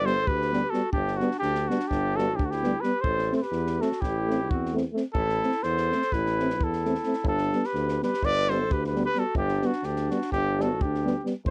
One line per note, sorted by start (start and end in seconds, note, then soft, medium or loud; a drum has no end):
0.00 0.29 G1 medium
0.00 0.12 G3 medium
0.06 0.14 B3 medium
0.06 0.28 A4 medium
0.06 0.29 C5 loud
0.06 snare soft
0.27 0.63 D2 medium
0.27 0.74 G4 medium
0.27 0.72 B4 loud
0.27 kick medium
0.42 snare soft
0.53 0.61 G3 medium
0.53 0.61 B3 medium
0.53 snare soft
0.70 0.81 G3 medium
0.70 0.81 B3 medium
0.70 0.92 F#4 medium
0.70 0.91 A4 medium
0.70 snare soft
0.92 1.21 G1 medium
0.92 1.20 D4 medium
0.92 1.18 G4 medium
0.92 kick medium
1.07 snare soft
1.17 1.29 G3 medium
1.17 1.41 D4 medium
1.17 1.38 F#4 medium
1.17 snare soft
1.21 1.29 B3 medium
1.31 snare soft
1.39 1.68 D2 medium
1.39 1.70 D4 medium
1.39 1.70 G4 loud
1.39 snare soft
1.55 snare soft
1.68 1.77 G3 medium
1.68 1.78 B3 medium
1.68 1.88 D4 medium
1.68 1.89 F#4 medium
1.68 snare soft
1.80 snare soft
1.88 2.41 G1 loud
1.88 2.18 D4 medium
1.88 2.18 G4 loud
1.88 kick medium
1.88 snare soft
2.16 2.26 G3 medium
2.16 2.27 B3 medium
2.16 2.38 F#4 medium
2.16 2.37 A4 medium
2.16 snare soft
2.36 2.75 D2 medium
2.36 2.48 D4 medium
2.36 2.47 G4 medium
2.36 kick medium
2.45 2.55 D4 medium
2.45 2.52 F#4 medium
2.50 2.84 E4 medium
2.50 2.82 G4 medium
2.50 snare soft
2.63 2.73 G3 medium
2.63 2.71 B3 medium
2.63 snare soft
2.81 2.91 G3 medium
2.81 2.92 B3 medium
2.81 3.05 G4 medium
2.81 3.02 B4 medium
2.81 snare soft
3.01 3.31 A1 medium
3.01 3.36 A4 medium
3.01 3.35 C5 loud
3.01 kick medium
3.18 snare soft
3.31 3.40 A3 medium
3.31 3.40 C4 medium
3.31 snare soft
3.36 3.44 A4 medium
3.36 3.43 C5 medium
3.42 3.83 G4 medium
3.42 3.83 B4 medium
3.42 snare soft
3.51 3.78 E2 medium
3.51 snare soft
3.66 snare soft
3.80 3.88 A3 medium
3.80 3.90 C4 medium
3.80 4.04 F#4 medium
3.80 4.02 A4 medium
3.80 snare soft
3.92 snare soft
4.01 4.51 A1 medium
4.01 4.53 E4 medium
4.01 4.52 G4 loud
4.01 kick medium
4.01 snare soft
4.27 4.36 A3 medium
4.27 4.39 C4 medium
4.27 snare soft
4.49 4.85 E2 medium
4.49 4.76 C4 medium
4.49 4.75 F#4 medium
4.49 kick medium
4.66 snare soft
4.72 4.80 A3 medium
4.76 4.84 C4 medium
4.76 snare soft
4.92 5.01 A3 medium
4.92 5.04 C4 medium
4.97 snare soft
5.13 5.41 A1 loud
5.13 5.65 E4 medium
5.13 5.64 A4 loud
5.13 kick medium
5.29 snare soft
5.41 5.50 A3 medium
5.41 5.52 C4 medium
5.41 snare soft
5.51 snare soft
5.63 5.91 E2 medium
5.63 6.15 A4 medium
5.63 6.14 C5 loud
5.63 snare soft
5.77 snare soft
5.92 6.00 A3 medium
5.92 6.01 C4 medium
5.92 snare soft
6.02 snare soft
6.12 6.61 A1 loud
6.12 6.63 E4 medium
6.12 6.65 B4 loud
6.12 kick medium
6.12 snare soft
6.26 snare soft
6.39 6.48 A3 medium
6.39 6.49 C4 medium
6.39 snare soft
6.50 snare soft
6.60 6.96 E2 medium
6.60 7.26 E4 medium
6.60 7.27 A4 medium
6.60 kick medium
6.73 snare soft
6.84 6.93 A3 medium
6.84 6.94 C4 medium
6.84 snare soft
6.95 snare soft
7.03 7.13 A3 medium
7.03 7.14 C4 medium
7.03 snare soft
7.13 snare soft
7.23 7.50 G1 medium
7.23 kick medium
7.27 7.66 D4 medium
7.27 7.67 A4 loud
7.38 snare soft
7.53 7.61 G3 medium
7.53 7.62 B3 medium
7.53 snare soft
7.64 8.02 G4 medium
7.64 8.03 B4 medium
7.64 snare soft
7.73 8.00 D2 medium
7.73 snare soft
7.88 snare soft
8.02 8.11 G3 medium
8.02 8.10 B3 medium
8.02 8.27 G4 medium
8.02 8.26 B4 medium
8.02 snare soft
8.14 snare soft
8.21 8.71 G1 medium
8.21 8.53 B4 medium
8.21 8.51 D5 loud
8.21 kick medium
8.21 snare soft
8.49 8.57 G3 medium
8.49 8.60 B3 medium
8.49 8.74 A4 loud
8.49 8.74 C5 loud
8.49 snare soft
8.70 9.06 D2 medium
8.70 8.88 G4 medium
8.70 8.86 B4 medium
8.70 kick medium
8.84 9.02 G4 medium
8.84 9.02 B4 medium
8.84 snare soft
8.94 9.02 G3 medium
8.94 9.04 B3 medium
8.94 snare soft
9.05 9.19 G4 medium
9.05 9.21 B4 loud
9.14 9.23 G3 medium
9.14 9.23 B3 medium
9.14 9.37 F#4 medium
9.14 snare soft
9.19 9.37 A4 medium
9.35 9.62 G1 loud
9.35 9.68 G4 loud
9.35 kick medium
9.39 9.67 D4 medium
9.48 snare soft
9.61 9.70 G3 medium
9.61 9.72 B3 medium
9.61 snare soft
9.66 9.87 D4 medium
9.66 9.86 F#4 medium
9.73 snare soft
9.83 10.10 D2 medium
9.83 10.13 G4 medium
9.83 snare soft
9.87 10.15 D4 medium
9.96 snare soft
10.09 10.18 G3 medium
10.09 10.20 B3 medium
10.09 10.31 F#4 medium
10.09 snare soft
10.15 10.34 D4 medium
10.22 snare soft
10.32 10.82 G1 medium
10.32 10.63 G4 loud
10.32 kick soft
10.32 snare soft
10.37 10.66 D4 medium
10.58 10.67 G3 medium
10.58 10.70 B3 medium
10.58 10.83 A4 medium
10.58 snare soft
10.64 10.86 F#4 medium
10.81 11.16 D2 medium
10.81 11.26 G4 medium
10.81 kick medium
10.85 11.28 D4 medium
10.94 snare soft
11.05 11.13 G3 medium
11.05 11.13 B3 medium
11.05 snare soft
11.24 11.33 G3 medium
11.24 11.33 B3 medium
11.24 snare soft
11.45 11.50 A1 loud
11.45 11.50 C5 loud
11.45 kick loud